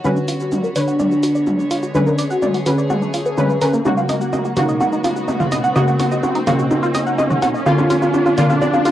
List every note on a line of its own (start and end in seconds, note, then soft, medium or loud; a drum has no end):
0.00 1.91 F#4 medium
0.00 riser medium
0.04 0.73 D3 medium
0.04 3.82 D3 medium
0.04 3.82 B3 medium
0.04 0.73 C#4 medium
0.04 0.10 F#4 loud
0.04 0.33 F#4 loud
0.04 0.73 B4 loud
0.04 3.82 C#5 medium
0.04 mid tom medium
0.04 shaker soft
0.16 0.20 D4 medium
0.16 shaker soft
0.28 0.34 F4 loud
0.28 open hi-hat loud
0.28 shaker medium
0.40 0.46 F#4 medium
0.40 0.69 F#4 loud
0.40 shaker soft
0.52 0.55 D4 medium
0.52 mid tom medium
0.52 shaker soft
0.64 0.70 A#4 loud
0.64 shaker soft
0.76 1.92 D3 medium
0.76 1.85 D4 loud
0.76 1.92 B4 loud
0.76 1.92 C#5 medium
0.76 0.82 D5 loud
0.76 open hi-hat loud
0.76 shaker medium
0.88 0.94 F#5 medium
0.88 shaker soft
0.99 1.05 D5 medium
0.99 mid tom medium
0.99 shaker soft
1.12 1.20 F#4 medium
1.12 shaker soft
1.23 1.29 F#4 loud
1.23 open hi-hat loud
1.23 shaker medium
1.35 1.41 D5 medium
1.35 shaker soft
1.47 1.53 F#4 loud
1.47 mid tom medium
1.47 shaker soft
1.59 1.63 D4 medium
1.59 shaker soft
1.71 1.77 F4 loud
1.71 open hi-hat loud
1.71 shaker medium
1.83 1.89 F#4 medium
1.83 shaker soft
1.95 2.63 D3 loud
1.95 2.63 C#4 medium
1.95 1.98 D4 medium
1.95 2.23 D4 loud
1.95 3.83 G#4 medium
1.95 2.63 B4 loud
1.95 mid tom medium
1.95 shaker soft
2.07 2.13 A#4 loud
2.07 shaker soft
2.19 2.24 D5 loud
2.19 open hi-hat loud
2.19 shaker medium
2.31 2.59 F#4 medium
2.31 2.36 F#5 medium
2.31 shaker soft
2.42 2.48 D5 loud
2.42 mid tom medium
2.42 shaker soft
2.54 2.63 F#4 medium
2.54 open hi-hat medium
2.54 shaker soft
2.66 3.35 D3 medium
2.66 3.35 C#4 medium
2.66 2.72 F#4 loud
2.66 3.76 G#4 loud
2.66 3.35 B4 loud
2.66 open hi-hat loud
2.66 shaker medium
2.78 2.84 D5 medium
2.78 shaker soft
2.90 2.96 F#4 loud
2.90 mid tom medium
2.90 shaker soft
3.02 3.06 D4 medium
3.02 shaker soft
3.14 3.20 F4 medium
3.14 open hi-hat loud
3.14 shaker medium
3.26 3.29 B4 medium
3.26 shaker soft
3.38 3.59 D3 medium
3.38 3.46 A#3 medium
3.38 3.59 C#4 medium
3.38 3.59 B4 loud
3.38 mid tom medium
3.38 shaker soft
3.50 3.58 B4 medium
3.50 shaker soft
3.61 3.82 D3 medium
3.61 3.82 C#4 medium
3.61 3.65 A#4 loud
3.61 3.82 B4 medium
3.61 open hi-hat loud
3.61 shaker medium
3.73 3.79 A#3 loud
3.73 shaker soft
3.85 7.62 C#3 medium
3.85 4.54 C#3 loud
3.85 7.62 F#3 medium
3.85 4.54 A#3 medium
3.85 8.91 A#3 medium
3.85 3.89 D#4 medium
3.85 4.14 F#4 loud
3.85 7.62 F#4 medium
3.85 4.54 F#4 loud
3.85 mid tom medium
3.85 shaker soft
3.97 4.03 F4 loud
3.97 shaker soft
4.09 4.15 D#5 loud
4.09 open hi-hat loud
4.09 mid tom medium
4.09 shaker medium
4.21 4.49 F#4 medium
4.21 4.27 F#5 medium
4.21 shaker soft
4.33 4.39 D#5 loud
4.33 mid tom medium
4.33 shaker soft
4.45 4.54 F#4 medium
4.45 shaker soft
4.57 5.73 C#3 medium
4.57 5.73 A#3 medium
4.57 5.66 D#4 loud
4.57 4.63 F#4 loud
4.57 5.73 F#4 medium
4.57 mid tom medium
4.57 open hi-hat loud
4.57 mid tom medium
4.57 shaker medium
4.69 4.74 D#5 medium
4.69 shaker soft
4.80 4.86 F#4 loud
4.80 mid tom medium
4.80 shaker soft
4.92 4.96 D#4 medium
4.92 shaker soft
5.04 5.10 F4 loud
5.04 open hi-hat loud
5.04 mid tom medium
5.04 shaker medium
5.16 5.22 F#4 medium
5.16 shaker soft
5.28 5.32 D#4 medium
5.28 mid tom medium
5.28 shaker soft
5.40 5.46 F4 loud
5.40 mid tom medium
5.40 shaker soft
5.52 5.58 D#5 loud
5.52 open hi-hat loud
5.52 mid tom medium
5.52 shaker medium
5.64 5.70 F#5 medium
5.64 shaker soft
5.76 6.44 C#3 loud
5.76 6.44 A#3 medium
5.76 6.44 F#4 loud
5.76 6.04 F#4 loud
5.76 5.82 D#5 loud
5.76 mid tom medium
5.76 shaker soft
5.88 5.96 F#4 medium
5.88 shaker soft
6.00 6.05 F#4 loud
6.00 open hi-hat loud
6.00 mid tom medium
6.00 shaker medium
6.11 6.40 F#4 medium
6.11 6.17 D#5 medium
6.11 shaker soft
6.23 6.29 F#4 loud
6.23 mid tom medium
6.23 shaker soft
6.35 6.39 D#4 medium
6.35 open hi-hat medium
6.35 shaker soft
6.47 7.63 C#3 medium
6.47 7.63 A#3 medium
6.47 7.57 D#4 loud
6.47 6.53 F4 loud
6.47 7.63 F#4 loud
6.47 mid tom medium
6.47 open hi-hat loud
6.47 mid tom medium
6.47 shaker medium
6.59 6.65 F#4 medium
6.59 shaker soft
6.71 6.74 D#4 medium
6.71 mid tom medium
6.71 shaker soft
6.83 6.89 F4 loud
6.83 shaker soft
6.95 7.01 D#5 loud
6.95 open hi-hat loud
6.95 mid tom medium
6.95 shaker medium
7.07 7.13 F#5 medium
7.07 shaker soft
7.19 7.24 D#5 loud
7.19 mid tom medium
7.19 shaker soft
7.30 7.39 F#4 medium
7.30 mid tom medium
7.30 shaker soft
7.42 7.48 F#4 loud
7.42 open hi-hat medium
7.42 mid tom medium
7.42 shaker medium
7.54 7.60 D#5 medium
7.54 shaker soft
7.66 8.91 D3 medium
7.66 8.35 D3 loud
7.66 8.91 F3 medium
7.66 8.35 A#3 medium
7.66 7.72 F4 loud
7.66 7.95 F4 loud
7.66 8.35 F4 loud
7.66 8.91 F4 medium
7.66 mid tom loud
7.66 shaker soft
7.78 7.82 D4 medium
7.78 mid tom medium
7.78 shaker soft
7.90 7.96 F4 loud
7.90 open hi-hat loud
7.90 mid tom medium
7.90 shaker medium
8.02 8.30 F4 medium
8.02 8.08 F4 medium
8.02 mid tom medium
8.02 shaker soft
8.14 8.17 D4 medium
8.14 mid tom medium
8.14 shaker soft
8.26 8.32 F4 loud
8.26 mid tom medium
8.26 shaker soft
8.37 8.91 D3 medium
8.37 8.91 A#3 medium
8.37 8.91 D4 loud
8.37 8.91 F4 loud
8.37 8.44 D5 loud
8.37 mid tom medium
8.37 open hi-hat loud
8.37 mid tom loud
8.37 shaker medium
8.50 8.55 F5 medium
8.50 mid tom medium
8.50 shaker soft
8.61 8.67 D5 loud
8.61 mid tom medium
8.61 shaker soft
8.73 8.82 F4 medium
8.73 mid tom medium
8.73 shaker soft
8.85 8.91 F4 loud
8.85 open hi-hat loud
8.85 mid tom medium
8.85 shaker medium